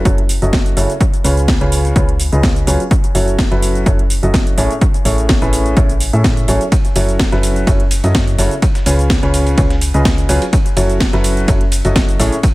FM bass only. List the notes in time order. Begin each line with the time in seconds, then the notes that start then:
0.05 F#1
0.42 F#1
0.77 F#1
1.24 C#2
1.61 C#2
1.96 C#2
2.32 C#2
2.67 C#2
3.15 F#1
3.51 F#1
3.86 F#1
4.23 F#1
4.58 A1
5.05 A1
5.42 A1
5.77 A1
6.13 A2
6.48 A1
6.96 F#1
7.32 F#1
7.67 F#1
8.04 F#2
8.38 F#1
8.86 C#2
9.23 C#2
9.58 C#2
9.94 C#2
10.29 C#2
10.77 F#1
11.13 F#1
11.48 F#1
11.85 F#1
12.19 A1